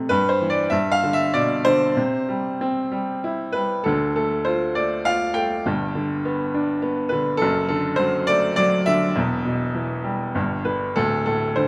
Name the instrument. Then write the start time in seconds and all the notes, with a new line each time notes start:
grand piano
Already playing: F2 C3 F3 A3 A4
0.09 G2 B4
0.29 C5
0.42 E3
0.50 D5
0.70 G2 E5
0.92 F5
1.03 D3
1.13 E5
1.34 B2 D5
1.65 D3 C5
1.97 C3
2.29 G3
2.61 C4
2.92 G3
3.24 E4
3.52 G3 B4
3.84 D2 D3 A4
4.16 A3 A4
4.45 F4 C5
4.75 A3 D5
5.05 F4 F5
5.34 A3 G5
5.66 G1 G2
5.95 D3
6.25 B3
6.54 D4
6.82 B3
7.09 D3 B4
7.37 A4
7.42 F#1 F#2
7.69 D3 A4
7.96 F#3 C5
8.27 A3 D5
8.56 F#3 D5
8.86 D3 E5
9.16 E1 E2
9.45 B2
9.75 E3
10.04 G3
10.35 G1 G2
10.65 D3 B4
10.96 D1 D2 A4
11.26 A2 A4
11.56 D3 C5